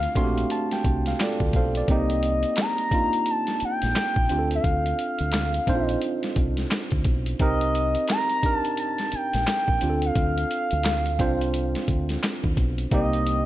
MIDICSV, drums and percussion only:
0, 0, Header, 1, 2, 480
1, 0, Start_track
1, 0, Tempo, 689655
1, 1309, Time_signature, 4, 2, 24, 8
1, 9365, End_track
2, 0, Start_track
2, 0, Title_t, "Drums"
2, 20, Note_on_c, 9, 42, 31
2, 89, Note_off_c, 9, 42, 0
2, 108, Note_on_c, 9, 36, 92
2, 111, Note_on_c, 9, 42, 72
2, 177, Note_off_c, 9, 36, 0
2, 181, Note_off_c, 9, 42, 0
2, 262, Note_on_c, 9, 42, 43
2, 331, Note_off_c, 9, 42, 0
2, 349, Note_on_c, 9, 42, 69
2, 419, Note_off_c, 9, 42, 0
2, 497, Note_on_c, 9, 42, 33
2, 505, Note_on_c, 9, 38, 31
2, 567, Note_off_c, 9, 42, 0
2, 574, Note_off_c, 9, 38, 0
2, 588, Note_on_c, 9, 36, 91
2, 590, Note_on_c, 9, 42, 64
2, 658, Note_off_c, 9, 36, 0
2, 659, Note_off_c, 9, 42, 0
2, 737, Note_on_c, 9, 42, 43
2, 745, Note_on_c, 9, 38, 37
2, 807, Note_off_c, 9, 42, 0
2, 815, Note_off_c, 9, 38, 0
2, 835, Note_on_c, 9, 39, 83
2, 836, Note_on_c, 9, 42, 76
2, 839, Note_on_c, 9, 38, 110
2, 905, Note_off_c, 9, 39, 0
2, 906, Note_off_c, 9, 42, 0
2, 909, Note_off_c, 9, 38, 0
2, 976, Note_on_c, 9, 36, 84
2, 1046, Note_off_c, 9, 36, 0
2, 1067, Note_on_c, 9, 42, 58
2, 1068, Note_on_c, 9, 36, 86
2, 1136, Note_off_c, 9, 42, 0
2, 1137, Note_off_c, 9, 36, 0
2, 1218, Note_on_c, 9, 42, 48
2, 1287, Note_off_c, 9, 42, 0
2, 1309, Note_on_c, 9, 36, 115
2, 1310, Note_on_c, 9, 42, 74
2, 1379, Note_off_c, 9, 36, 0
2, 1379, Note_off_c, 9, 42, 0
2, 1460, Note_on_c, 9, 42, 35
2, 1530, Note_off_c, 9, 42, 0
2, 1550, Note_on_c, 9, 42, 66
2, 1620, Note_off_c, 9, 42, 0
2, 1690, Note_on_c, 9, 42, 44
2, 1760, Note_off_c, 9, 42, 0
2, 1780, Note_on_c, 9, 42, 72
2, 1792, Note_on_c, 9, 39, 88
2, 1796, Note_on_c, 9, 38, 108
2, 1850, Note_off_c, 9, 42, 0
2, 1861, Note_off_c, 9, 39, 0
2, 1865, Note_off_c, 9, 38, 0
2, 1937, Note_on_c, 9, 42, 31
2, 2006, Note_off_c, 9, 42, 0
2, 2028, Note_on_c, 9, 36, 100
2, 2031, Note_on_c, 9, 42, 78
2, 2098, Note_off_c, 9, 36, 0
2, 2101, Note_off_c, 9, 42, 0
2, 2179, Note_on_c, 9, 42, 41
2, 2249, Note_off_c, 9, 42, 0
2, 2268, Note_on_c, 9, 42, 73
2, 2337, Note_off_c, 9, 42, 0
2, 2415, Note_on_c, 9, 42, 35
2, 2423, Note_on_c, 9, 38, 34
2, 2484, Note_off_c, 9, 42, 0
2, 2492, Note_off_c, 9, 38, 0
2, 2506, Note_on_c, 9, 42, 57
2, 2576, Note_off_c, 9, 42, 0
2, 2657, Note_on_c, 9, 42, 45
2, 2666, Note_on_c, 9, 38, 36
2, 2727, Note_off_c, 9, 42, 0
2, 2735, Note_off_c, 9, 38, 0
2, 2754, Note_on_c, 9, 39, 89
2, 2755, Note_on_c, 9, 42, 75
2, 2758, Note_on_c, 9, 38, 107
2, 2824, Note_off_c, 9, 39, 0
2, 2825, Note_off_c, 9, 42, 0
2, 2828, Note_off_c, 9, 38, 0
2, 2897, Note_on_c, 9, 36, 79
2, 2967, Note_off_c, 9, 36, 0
2, 2988, Note_on_c, 9, 42, 62
2, 3058, Note_off_c, 9, 42, 0
2, 3138, Note_on_c, 9, 42, 46
2, 3208, Note_off_c, 9, 42, 0
2, 3230, Note_on_c, 9, 36, 107
2, 3231, Note_on_c, 9, 42, 68
2, 3299, Note_off_c, 9, 36, 0
2, 3301, Note_off_c, 9, 42, 0
2, 3382, Note_on_c, 9, 42, 34
2, 3451, Note_off_c, 9, 42, 0
2, 3472, Note_on_c, 9, 42, 64
2, 3541, Note_off_c, 9, 42, 0
2, 3609, Note_on_c, 9, 42, 44
2, 3679, Note_off_c, 9, 42, 0
2, 3700, Note_on_c, 9, 42, 73
2, 3711, Note_on_c, 9, 39, 81
2, 3715, Note_on_c, 9, 38, 105
2, 3770, Note_off_c, 9, 42, 0
2, 3781, Note_off_c, 9, 39, 0
2, 3785, Note_off_c, 9, 38, 0
2, 3858, Note_on_c, 9, 42, 31
2, 3927, Note_off_c, 9, 42, 0
2, 3948, Note_on_c, 9, 36, 90
2, 3951, Note_on_c, 9, 42, 70
2, 4017, Note_off_c, 9, 36, 0
2, 4020, Note_off_c, 9, 42, 0
2, 4098, Note_on_c, 9, 42, 43
2, 4168, Note_off_c, 9, 42, 0
2, 4187, Note_on_c, 9, 42, 64
2, 4256, Note_off_c, 9, 42, 0
2, 4336, Note_on_c, 9, 42, 36
2, 4344, Note_on_c, 9, 38, 31
2, 4405, Note_off_c, 9, 42, 0
2, 4413, Note_off_c, 9, 38, 0
2, 4427, Note_on_c, 9, 42, 62
2, 4429, Note_on_c, 9, 36, 94
2, 4496, Note_off_c, 9, 42, 0
2, 4498, Note_off_c, 9, 36, 0
2, 4573, Note_on_c, 9, 42, 43
2, 4581, Note_on_c, 9, 38, 34
2, 4642, Note_off_c, 9, 42, 0
2, 4651, Note_off_c, 9, 38, 0
2, 4670, Note_on_c, 9, 39, 90
2, 4671, Note_on_c, 9, 42, 75
2, 4674, Note_on_c, 9, 38, 110
2, 4740, Note_off_c, 9, 39, 0
2, 4741, Note_off_c, 9, 42, 0
2, 4744, Note_off_c, 9, 38, 0
2, 4807, Note_on_c, 9, 42, 32
2, 4816, Note_on_c, 9, 36, 79
2, 4876, Note_off_c, 9, 42, 0
2, 4886, Note_off_c, 9, 36, 0
2, 4903, Note_on_c, 9, 42, 60
2, 4907, Note_on_c, 9, 36, 90
2, 4972, Note_off_c, 9, 42, 0
2, 4977, Note_off_c, 9, 36, 0
2, 5054, Note_on_c, 9, 42, 50
2, 5124, Note_off_c, 9, 42, 0
2, 5147, Note_on_c, 9, 42, 64
2, 5149, Note_on_c, 9, 36, 118
2, 5216, Note_off_c, 9, 42, 0
2, 5218, Note_off_c, 9, 36, 0
2, 5298, Note_on_c, 9, 42, 32
2, 5367, Note_off_c, 9, 42, 0
2, 5394, Note_on_c, 9, 42, 59
2, 5464, Note_off_c, 9, 42, 0
2, 5532, Note_on_c, 9, 42, 43
2, 5601, Note_off_c, 9, 42, 0
2, 5621, Note_on_c, 9, 42, 77
2, 5633, Note_on_c, 9, 39, 82
2, 5637, Note_on_c, 9, 38, 97
2, 5691, Note_off_c, 9, 42, 0
2, 5702, Note_off_c, 9, 39, 0
2, 5706, Note_off_c, 9, 38, 0
2, 5774, Note_on_c, 9, 42, 32
2, 5843, Note_off_c, 9, 42, 0
2, 5868, Note_on_c, 9, 36, 90
2, 5868, Note_on_c, 9, 42, 73
2, 5938, Note_off_c, 9, 36, 0
2, 5938, Note_off_c, 9, 42, 0
2, 6019, Note_on_c, 9, 42, 44
2, 6088, Note_off_c, 9, 42, 0
2, 6106, Note_on_c, 9, 42, 69
2, 6176, Note_off_c, 9, 42, 0
2, 6253, Note_on_c, 9, 42, 33
2, 6261, Note_on_c, 9, 38, 35
2, 6323, Note_off_c, 9, 42, 0
2, 6331, Note_off_c, 9, 38, 0
2, 6346, Note_on_c, 9, 42, 58
2, 6416, Note_off_c, 9, 42, 0
2, 6497, Note_on_c, 9, 42, 43
2, 6506, Note_on_c, 9, 38, 35
2, 6567, Note_off_c, 9, 42, 0
2, 6575, Note_off_c, 9, 38, 0
2, 6592, Note_on_c, 9, 39, 93
2, 6593, Note_on_c, 9, 42, 75
2, 6596, Note_on_c, 9, 38, 105
2, 6662, Note_off_c, 9, 39, 0
2, 6663, Note_off_c, 9, 42, 0
2, 6666, Note_off_c, 9, 38, 0
2, 6737, Note_on_c, 9, 36, 85
2, 6807, Note_off_c, 9, 36, 0
2, 6828, Note_on_c, 9, 42, 65
2, 6897, Note_off_c, 9, 42, 0
2, 6974, Note_on_c, 9, 42, 44
2, 7043, Note_off_c, 9, 42, 0
2, 7068, Note_on_c, 9, 42, 71
2, 7069, Note_on_c, 9, 36, 113
2, 7138, Note_off_c, 9, 42, 0
2, 7139, Note_off_c, 9, 36, 0
2, 7222, Note_on_c, 9, 42, 34
2, 7292, Note_off_c, 9, 42, 0
2, 7314, Note_on_c, 9, 42, 66
2, 7383, Note_off_c, 9, 42, 0
2, 7452, Note_on_c, 9, 42, 44
2, 7522, Note_off_c, 9, 42, 0
2, 7541, Note_on_c, 9, 42, 77
2, 7552, Note_on_c, 9, 39, 83
2, 7556, Note_on_c, 9, 38, 111
2, 7610, Note_off_c, 9, 42, 0
2, 7622, Note_off_c, 9, 39, 0
2, 7626, Note_off_c, 9, 38, 0
2, 7696, Note_on_c, 9, 42, 31
2, 7766, Note_off_c, 9, 42, 0
2, 7789, Note_on_c, 9, 36, 93
2, 7793, Note_on_c, 9, 42, 74
2, 7859, Note_off_c, 9, 36, 0
2, 7862, Note_off_c, 9, 42, 0
2, 7944, Note_on_c, 9, 42, 44
2, 8014, Note_off_c, 9, 42, 0
2, 8031, Note_on_c, 9, 42, 76
2, 8100, Note_off_c, 9, 42, 0
2, 8179, Note_on_c, 9, 42, 36
2, 8187, Note_on_c, 9, 38, 31
2, 8249, Note_off_c, 9, 42, 0
2, 8257, Note_off_c, 9, 38, 0
2, 8268, Note_on_c, 9, 36, 86
2, 8268, Note_on_c, 9, 42, 62
2, 8338, Note_off_c, 9, 36, 0
2, 8338, Note_off_c, 9, 42, 0
2, 8416, Note_on_c, 9, 42, 43
2, 8424, Note_on_c, 9, 38, 38
2, 8485, Note_off_c, 9, 42, 0
2, 8494, Note_off_c, 9, 38, 0
2, 8514, Note_on_c, 9, 39, 91
2, 8515, Note_on_c, 9, 42, 76
2, 8518, Note_on_c, 9, 38, 117
2, 8584, Note_off_c, 9, 39, 0
2, 8585, Note_off_c, 9, 42, 0
2, 8588, Note_off_c, 9, 38, 0
2, 8657, Note_on_c, 9, 36, 86
2, 8727, Note_off_c, 9, 36, 0
2, 8749, Note_on_c, 9, 36, 91
2, 8750, Note_on_c, 9, 42, 58
2, 8819, Note_off_c, 9, 36, 0
2, 8819, Note_off_c, 9, 42, 0
2, 8896, Note_on_c, 9, 42, 48
2, 8966, Note_off_c, 9, 42, 0
2, 8989, Note_on_c, 9, 36, 115
2, 8989, Note_on_c, 9, 42, 68
2, 9058, Note_off_c, 9, 36, 0
2, 9058, Note_off_c, 9, 42, 0
2, 9141, Note_on_c, 9, 42, 35
2, 9211, Note_off_c, 9, 42, 0
2, 9233, Note_on_c, 9, 42, 65
2, 9302, Note_off_c, 9, 42, 0
2, 9365, End_track
0, 0, End_of_file